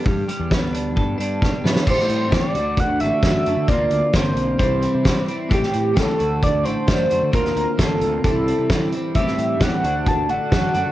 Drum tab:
CC |----------------|x---------------|----------------|----------------|
HH |--x---x---x-----|--x-x-x-x-x-x-x-|x-x-x-x-x-x-x-x-|x-x-x-x-x-x-x-x-|
SD |----o-------o-oo|-o--o-------o---|----o-------o---|-o--o-------o---|
BD |o---o---o---o---|o---o---o---o---|o---o---o---o---|o---o---o---o---|

CC |----------------|----------------|
HH |x-x-x-x-x-x-x-x-|x-x-x-x-x-x-x-x-|
SD |-o--o-------o---|-o--o-------o---|
BD |o---o---o---o---|o---o---o---o---|